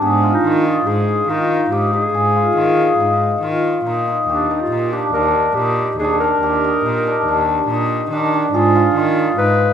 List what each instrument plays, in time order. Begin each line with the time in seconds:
Already playing: hammered dulcimer D4
0.02 cello G#2, clarinet B3, hammered dulcimer G#4
0.23 hammered dulcimer F4
0.34 clarinet D#4
0.44 cello D#3, hammered dulcimer F4
0.66 hammered dulcimer D#4, clarinet F4
0.86 cello G#2, hammered dulcimer D#4, clarinet G#4
1.28 cello D#3, clarinet D#4, hammered dulcimer F4
1.71 cello G#2, hammered dulcimer D#4, clarinet G4
1.93 hammered dulcimer D#4, clarinet G#4
2.14 cello G#2, hammered dulcimer G#4
2.36 hammered dulcimer F4
2.57 cello D#3, hammered dulcimer F4
2.79 hammered dulcimer D#4
2.99 cello G#2, hammered dulcimer D#4
3.42 cello D#3, hammered dulcimer F4
3.85 cello A#2, hammered dulcimer D#4
4.08 hammered dulcimer D#4
4.28 cello D#2, clarinet D4, hammered dulcimer G4
4.51 hammered dulcimer D#4
4.61 clarinet F4
4.71 cello A#2, hammered dulcimer D#4
4.92 hammered dulcimer D4, clarinet G4
5.13 cello D#2, hammered dulcimer D4, clarinet A#4
5.55 cello A#2, hammered dulcimer D#4, clarinet G4
5.98 cello D#2, hammered dulcimer D4, clarinet G#4
6.20 hammered dulcimer D4, clarinet A#4
6.42 cello D#2, hammered dulcimer G4
6.64 hammered dulcimer D#4
6.85 cello A#2, hammered dulcimer D#4
7.07 hammered dulcimer D4
7.27 cello D#2, hammered dulcimer D4
7.69 cello A#2, hammered dulcimer D#4
8.11 cello D#3, hammered dulcimer D4
8.34 hammered dulcimer D4
8.53 cello G#2, clarinet F4, hammered dulcimer G#4
8.75 hammered dulcimer F4
8.95 cello D#3, hammered dulcimer F4
9.18 hammered dulcimer D#4
9.38 cello G#2, hammered dulcimer D#4, clarinet B4